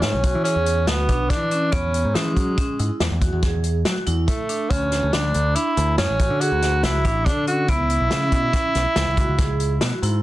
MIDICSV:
0, 0, Header, 1, 5, 480
1, 0, Start_track
1, 0, Tempo, 425532
1, 1951, Time_signature, 7, 2, 24, 8
1, 11535, End_track
2, 0, Start_track
2, 0, Title_t, "Vibraphone"
2, 0, Program_c, 0, 11
2, 0, Note_on_c, 0, 64, 68
2, 138, Note_off_c, 0, 64, 0
2, 271, Note_on_c, 0, 66, 62
2, 445, Note_off_c, 0, 66, 0
2, 511, Note_on_c, 0, 68, 74
2, 860, Note_off_c, 0, 68, 0
2, 989, Note_on_c, 0, 66, 73
2, 1164, Note_off_c, 0, 66, 0
2, 1232, Note_on_c, 0, 62, 75
2, 1580, Note_off_c, 0, 62, 0
2, 1715, Note_on_c, 0, 61, 71
2, 1887, Note_off_c, 0, 61, 0
2, 1942, Note_on_c, 0, 59, 84
2, 2293, Note_off_c, 0, 59, 0
2, 2428, Note_on_c, 0, 61, 76
2, 2777, Note_off_c, 0, 61, 0
2, 2907, Note_on_c, 0, 61, 77
2, 3083, Note_off_c, 0, 61, 0
2, 3149, Note_on_c, 0, 64, 65
2, 3497, Note_off_c, 0, 64, 0
2, 3631, Note_on_c, 0, 66, 69
2, 3805, Note_off_c, 0, 66, 0
2, 3871, Note_on_c, 0, 68, 68
2, 4218, Note_off_c, 0, 68, 0
2, 4349, Note_on_c, 0, 66, 77
2, 4523, Note_off_c, 0, 66, 0
2, 4588, Note_on_c, 0, 64, 80
2, 4937, Note_off_c, 0, 64, 0
2, 5067, Note_on_c, 0, 62, 72
2, 5242, Note_off_c, 0, 62, 0
2, 5309, Note_on_c, 0, 61, 83
2, 5657, Note_off_c, 0, 61, 0
2, 5792, Note_on_c, 0, 62, 74
2, 6139, Note_off_c, 0, 62, 0
2, 6270, Note_on_c, 0, 62, 77
2, 6443, Note_off_c, 0, 62, 0
2, 6508, Note_on_c, 0, 64, 73
2, 6856, Note_off_c, 0, 64, 0
2, 6990, Note_on_c, 0, 66, 74
2, 7163, Note_off_c, 0, 66, 0
2, 7230, Note_on_c, 0, 68, 76
2, 7577, Note_off_c, 0, 68, 0
2, 7708, Note_on_c, 0, 66, 78
2, 7882, Note_off_c, 0, 66, 0
2, 7953, Note_on_c, 0, 62, 74
2, 8299, Note_off_c, 0, 62, 0
2, 8429, Note_on_c, 0, 61, 69
2, 8603, Note_off_c, 0, 61, 0
2, 8670, Note_on_c, 0, 59, 88
2, 9017, Note_off_c, 0, 59, 0
2, 9153, Note_on_c, 0, 61, 77
2, 9499, Note_off_c, 0, 61, 0
2, 9624, Note_on_c, 0, 61, 69
2, 9799, Note_off_c, 0, 61, 0
2, 9865, Note_on_c, 0, 64, 74
2, 10214, Note_off_c, 0, 64, 0
2, 10353, Note_on_c, 0, 66, 67
2, 10525, Note_off_c, 0, 66, 0
2, 10589, Note_on_c, 0, 68, 75
2, 10938, Note_off_c, 0, 68, 0
2, 11073, Note_on_c, 0, 66, 75
2, 11246, Note_off_c, 0, 66, 0
2, 11317, Note_on_c, 0, 64, 74
2, 11535, Note_off_c, 0, 64, 0
2, 11535, End_track
3, 0, Start_track
3, 0, Title_t, "Tenor saxophone"
3, 0, Program_c, 1, 66
3, 19, Note_on_c, 1, 61, 85
3, 488, Note_off_c, 1, 61, 0
3, 495, Note_on_c, 1, 61, 92
3, 987, Note_on_c, 1, 59, 85
3, 1004, Note_off_c, 1, 61, 0
3, 1459, Note_on_c, 1, 62, 86
3, 1476, Note_off_c, 1, 59, 0
3, 1939, Note_on_c, 1, 61, 97
3, 1956, Note_off_c, 1, 62, 0
3, 2428, Note_on_c, 1, 56, 73
3, 2445, Note_off_c, 1, 61, 0
3, 3389, Note_off_c, 1, 56, 0
3, 4828, Note_on_c, 1, 57, 84
3, 5301, Note_on_c, 1, 61, 106
3, 5318, Note_off_c, 1, 57, 0
3, 5782, Note_on_c, 1, 62, 89
3, 5799, Note_off_c, 1, 61, 0
3, 6267, Note_on_c, 1, 64, 92
3, 6284, Note_off_c, 1, 62, 0
3, 6742, Note_off_c, 1, 64, 0
3, 6749, Note_on_c, 1, 61, 94
3, 7226, Note_on_c, 1, 66, 106
3, 7243, Note_off_c, 1, 61, 0
3, 7712, Note_on_c, 1, 64, 98
3, 7728, Note_off_c, 1, 66, 0
3, 8186, Note_on_c, 1, 62, 93
3, 8203, Note_off_c, 1, 64, 0
3, 8427, Note_off_c, 1, 62, 0
3, 8434, Note_on_c, 1, 66, 90
3, 8673, Note_on_c, 1, 64, 119
3, 8690, Note_off_c, 1, 66, 0
3, 11535, Note_off_c, 1, 64, 0
3, 11535, End_track
4, 0, Start_track
4, 0, Title_t, "Picked electric bass"
4, 0, Program_c, 2, 34
4, 25, Note_on_c, 2, 44, 97
4, 141, Note_off_c, 2, 44, 0
4, 152, Note_on_c, 2, 35, 70
4, 378, Note_off_c, 2, 35, 0
4, 395, Note_on_c, 2, 52, 74
4, 619, Note_off_c, 2, 52, 0
4, 629, Note_on_c, 2, 40, 81
4, 989, Note_off_c, 2, 40, 0
4, 989, Note_on_c, 2, 38, 90
4, 1216, Note_off_c, 2, 38, 0
4, 1229, Note_on_c, 2, 35, 74
4, 1467, Note_on_c, 2, 52, 75
4, 1484, Note_off_c, 2, 35, 0
4, 1921, Note_off_c, 2, 52, 0
4, 1948, Note_on_c, 2, 40, 91
4, 2288, Note_off_c, 2, 40, 0
4, 2309, Note_on_c, 2, 44, 75
4, 2423, Note_off_c, 2, 44, 0
4, 2433, Note_on_c, 2, 52, 92
4, 2671, Note_off_c, 2, 52, 0
4, 2671, Note_on_c, 2, 54, 83
4, 2897, Note_off_c, 2, 54, 0
4, 3153, Note_on_c, 2, 44, 82
4, 3265, Note_off_c, 2, 44, 0
4, 3388, Note_on_c, 2, 40, 93
4, 3500, Note_off_c, 2, 40, 0
4, 3506, Note_on_c, 2, 40, 77
4, 3734, Note_off_c, 2, 40, 0
4, 3749, Note_on_c, 2, 40, 82
4, 4314, Note_off_c, 2, 40, 0
4, 4347, Note_on_c, 2, 54, 85
4, 4461, Note_off_c, 2, 54, 0
4, 4591, Note_on_c, 2, 40, 78
4, 4816, Note_off_c, 2, 40, 0
4, 5307, Note_on_c, 2, 38, 90
4, 5647, Note_off_c, 2, 38, 0
4, 5672, Note_on_c, 2, 38, 94
4, 5784, Note_off_c, 2, 38, 0
4, 5789, Note_on_c, 2, 38, 84
4, 6015, Note_off_c, 2, 38, 0
4, 6032, Note_on_c, 2, 38, 91
4, 6256, Note_off_c, 2, 38, 0
4, 6511, Note_on_c, 2, 38, 88
4, 6736, Note_off_c, 2, 38, 0
4, 6748, Note_on_c, 2, 42, 98
4, 6861, Note_off_c, 2, 42, 0
4, 6870, Note_on_c, 2, 33, 83
4, 7095, Note_off_c, 2, 33, 0
4, 7110, Note_on_c, 2, 50, 78
4, 7335, Note_off_c, 2, 50, 0
4, 7351, Note_on_c, 2, 38, 84
4, 7707, Note_on_c, 2, 37, 92
4, 7724, Note_off_c, 2, 38, 0
4, 7933, Note_off_c, 2, 37, 0
4, 7949, Note_on_c, 2, 33, 76
4, 8190, Note_on_c, 2, 50, 82
4, 8207, Note_off_c, 2, 33, 0
4, 8641, Note_off_c, 2, 50, 0
4, 8670, Note_on_c, 2, 37, 94
4, 9008, Note_off_c, 2, 37, 0
4, 9026, Note_on_c, 2, 35, 85
4, 9140, Note_off_c, 2, 35, 0
4, 9150, Note_on_c, 2, 49, 88
4, 9387, Note_off_c, 2, 49, 0
4, 9387, Note_on_c, 2, 47, 89
4, 9613, Note_off_c, 2, 47, 0
4, 9871, Note_on_c, 2, 35, 84
4, 9982, Note_off_c, 2, 35, 0
4, 10109, Note_on_c, 2, 37, 95
4, 10222, Note_off_c, 2, 37, 0
4, 10234, Note_on_c, 2, 37, 74
4, 10457, Note_off_c, 2, 37, 0
4, 10469, Note_on_c, 2, 37, 79
4, 11034, Note_off_c, 2, 37, 0
4, 11067, Note_on_c, 2, 47, 80
4, 11181, Note_off_c, 2, 47, 0
4, 11307, Note_on_c, 2, 44, 76
4, 11525, Note_off_c, 2, 44, 0
4, 11535, End_track
5, 0, Start_track
5, 0, Title_t, "Drums"
5, 22, Note_on_c, 9, 38, 91
5, 22, Note_on_c, 9, 42, 70
5, 135, Note_off_c, 9, 38, 0
5, 135, Note_off_c, 9, 42, 0
5, 265, Note_on_c, 9, 42, 62
5, 268, Note_on_c, 9, 36, 78
5, 378, Note_off_c, 9, 42, 0
5, 381, Note_off_c, 9, 36, 0
5, 508, Note_on_c, 9, 42, 75
5, 621, Note_off_c, 9, 42, 0
5, 746, Note_on_c, 9, 42, 55
5, 859, Note_off_c, 9, 42, 0
5, 985, Note_on_c, 9, 38, 100
5, 985, Note_on_c, 9, 42, 80
5, 1098, Note_off_c, 9, 38, 0
5, 1098, Note_off_c, 9, 42, 0
5, 1225, Note_on_c, 9, 42, 56
5, 1228, Note_on_c, 9, 36, 64
5, 1338, Note_off_c, 9, 42, 0
5, 1341, Note_off_c, 9, 36, 0
5, 1465, Note_on_c, 9, 38, 31
5, 1465, Note_on_c, 9, 42, 74
5, 1467, Note_on_c, 9, 36, 89
5, 1578, Note_off_c, 9, 38, 0
5, 1578, Note_off_c, 9, 42, 0
5, 1580, Note_off_c, 9, 36, 0
5, 1704, Note_on_c, 9, 42, 54
5, 1817, Note_off_c, 9, 42, 0
5, 1942, Note_on_c, 9, 42, 78
5, 1948, Note_on_c, 9, 36, 106
5, 2055, Note_off_c, 9, 42, 0
5, 2061, Note_off_c, 9, 36, 0
5, 2188, Note_on_c, 9, 42, 66
5, 2301, Note_off_c, 9, 42, 0
5, 2428, Note_on_c, 9, 38, 99
5, 2428, Note_on_c, 9, 42, 79
5, 2540, Note_off_c, 9, 38, 0
5, 2540, Note_off_c, 9, 42, 0
5, 2668, Note_on_c, 9, 36, 75
5, 2669, Note_on_c, 9, 42, 55
5, 2781, Note_off_c, 9, 36, 0
5, 2782, Note_off_c, 9, 42, 0
5, 2905, Note_on_c, 9, 42, 75
5, 2908, Note_on_c, 9, 36, 103
5, 3018, Note_off_c, 9, 42, 0
5, 3021, Note_off_c, 9, 36, 0
5, 3149, Note_on_c, 9, 42, 53
5, 3262, Note_off_c, 9, 42, 0
5, 3387, Note_on_c, 9, 38, 92
5, 3387, Note_on_c, 9, 42, 69
5, 3500, Note_off_c, 9, 38, 0
5, 3500, Note_off_c, 9, 42, 0
5, 3625, Note_on_c, 9, 42, 62
5, 3627, Note_on_c, 9, 36, 76
5, 3738, Note_off_c, 9, 42, 0
5, 3740, Note_off_c, 9, 36, 0
5, 3863, Note_on_c, 9, 38, 35
5, 3863, Note_on_c, 9, 42, 70
5, 3867, Note_on_c, 9, 36, 101
5, 3975, Note_off_c, 9, 38, 0
5, 3975, Note_off_c, 9, 42, 0
5, 3979, Note_off_c, 9, 36, 0
5, 4101, Note_on_c, 9, 42, 54
5, 4214, Note_off_c, 9, 42, 0
5, 4345, Note_on_c, 9, 38, 101
5, 4345, Note_on_c, 9, 42, 78
5, 4457, Note_off_c, 9, 38, 0
5, 4457, Note_off_c, 9, 42, 0
5, 4585, Note_on_c, 9, 42, 56
5, 4697, Note_off_c, 9, 42, 0
5, 4826, Note_on_c, 9, 42, 78
5, 4827, Note_on_c, 9, 36, 93
5, 4938, Note_off_c, 9, 42, 0
5, 4940, Note_off_c, 9, 36, 0
5, 5064, Note_on_c, 9, 42, 52
5, 5177, Note_off_c, 9, 42, 0
5, 5306, Note_on_c, 9, 42, 83
5, 5307, Note_on_c, 9, 36, 99
5, 5419, Note_off_c, 9, 42, 0
5, 5420, Note_off_c, 9, 36, 0
5, 5546, Note_on_c, 9, 38, 34
5, 5546, Note_on_c, 9, 42, 61
5, 5659, Note_off_c, 9, 38, 0
5, 5659, Note_off_c, 9, 42, 0
5, 5787, Note_on_c, 9, 38, 98
5, 5787, Note_on_c, 9, 42, 79
5, 5900, Note_off_c, 9, 38, 0
5, 5900, Note_off_c, 9, 42, 0
5, 6026, Note_on_c, 9, 42, 61
5, 6138, Note_off_c, 9, 42, 0
5, 6266, Note_on_c, 9, 42, 84
5, 6379, Note_off_c, 9, 42, 0
5, 6509, Note_on_c, 9, 42, 61
5, 6622, Note_off_c, 9, 42, 0
5, 6746, Note_on_c, 9, 38, 100
5, 6746, Note_on_c, 9, 42, 82
5, 6859, Note_off_c, 9, 38, 0
5, 6859, Note_off_c, 9, 42, 0
5, 6988, Note_on_c, 9, 42, 66
5, 6989, Note_on_c, 9, 36, 82
5, 7101, Note_off_c, 9, 42, 0
5, 7102, Note_off_c, 9, 36, 0
5, 7231, Note_on_c, 9, 42, 75
5, 7344, Note_off_c, 9, 42, 0
5, 7471, Note_on_c, 9, 38, 31
5, 7471, Note_on_c, 9, 42, 55
5, 7584, Note_off_c, 9, 38, 0
5, 7584, Note_off_c, 9, 42, 0
5, 7710, Note_on_c, 9, 38, 102
5, 7710, Note_on_c, 9, 42, 79
5, 7823, Note_off_c, 9, 38, 0
5, 7823, Note_off_c, 9, 42, 0
5, 7949, Note_on_c, 9, 42, 52
5, 7950, Note_on_c, 9, 36, 70
5, 8061, Note_off_c, 9, 42, 0
5, 8063, Note_off_c, 9, 36, 0
5, 8191, Note_on_c, 9, 36, 91
5, 8193, Note_on_c, 9, 42, 69
5, 8304, Note_off_c, 9, 36, 0
5, 8306, Note_off_c, 9, 42, 0
5, 8429, Note_on_c, 9, 42, 48
5, 8542, Note_off_c, 9, 42, 0
5, 8666, Note_on_c, 9, 42, 75
5, 8669, Note_on_c, 9, 36, 101
5, 8779, Note_off_c, 9, 42, 0
5, 8781, Note_off_c, 9, 36, 0
5, 8907, Note_on_c, 9, 42, 57
5, 9020, Note_off_c, 9, 42, 0
5, 9144, Note_on_c, 9, 38, 101
5, 9144, Note_on_c, 9, 42, 72
5, 9256, Note_off_c, 9, 38, 0
5, 9256, Note_off_c, 9, 42, 0
5, 9383, Note_on_c, 9, 42, 61
5, 9386, Note_on_c, 9, 36, 76
5, 9496, Note_off_c, 9, 42, 0
5, 9498, Note_off_c, 9, 36, 0
5, 9626, Note_on_c, 9, 36, 102
5, 9626, Note_on_c, 9, 38, 31
5, 9626, Note_on_c, 9, 42, 81
5, 9738, Note_off_c, 9, 38, 0
5, 9738, Note_off_c, 9, 42, 0
5, 9739, Note_off_c, 9, 36, 0
5, 9868, Note_on_c, 9, 38, 31
5, 9868, Note_on_c, 9, 42, 62
5, 9981, Note_off_c, 9, 38, 0
5, 9981, Note_off_c, 9, 42, 0
5, 10105, Note_on_c, 9, 38, 100
5, 10105, Note_on_c, 9, 42, 77
5, 10217, Note_off_c, 9, 38, 0
5, 10217, Note_off_c, 9, 42, 0
5, 10346, Note_on_c, 9, 36, 78
5, 10347, Note_on_c, 9, 42, 65
5, 10459, Note_off_c, 9, 36, 0
5, 10460, Note_off_c, 9, 42, 0
5, 10584, Note_on_c, 9, 38, 31
5, 10584, Note_on_c, 9, 42, 86
5, 10588, Note_on_c, 9, 36, 103
5, 10697, Note_off_c, 9, 38, 0
5, 10697, Note_off_c, 9, 42, 0
5, 10701, Note_off_c, 9, 36, 0
5, 10827, Note_on_c, 9, 42, 58
5, 10939, Note_off_c, 9, 42, 0
5, 11065, Note_on_c, 9, 38, 111
5, 11065, Note_on_c, 9, 42, 83
5, 11178, Note_off_c, 9, 38, 0
5, 11178, Note_off_c, 9, 42, 0
5, 11311, Note_on_c, 9, 42, 54
5, 11424, Note_off_c, 9, 42, 0
5, 11535, End_track
0, 0, End_of_file